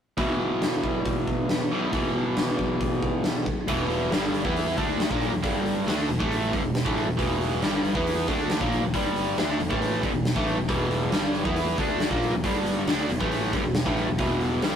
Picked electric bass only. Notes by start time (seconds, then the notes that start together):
3.68 E1
4.12 G1
4.45 E2
4.78 D2
5.11 A#1
5.33 E1
5.44 G1
5.87 D2
6.09 E1
6.20 A1
6.53 G1
6.64 E1
6.86 A1
7.08 E1
7.19 E1
7.62 G1
7.95 E2
8.28 D2
8.61 A#1
8.82 E1
8.94 G1
9.38 D2
9.59 E1
9.71 A1
10.03 G1
10.14 E1
10.36 A1
10.58 E1
10.69 E1
11.12 G1
11.45 E2
11.78 D2
12.11 A#1
12.33 E1
12.44 G1
12.87 D2
13.09 E1
13.21 A1
13.53 G1
13.64 E1
13.86 A1
14.08 E1
14.19 E1
14.62 G1